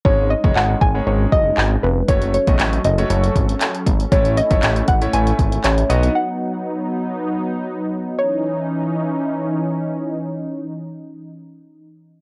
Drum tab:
HH |----------------|xxxxxxxxxxxxxxxx|xxxxxxxxxxxxxxxx|----------------|
CP |----x-------x---|----x-------x---|----x-------x---|----------------|
BD |o--o--o---o-----|o--o------o---o-|o--o--o---o-----|----------------|

HH |----------------|----------------|
CP |----------------|----------------|
BD |----------------|----------------|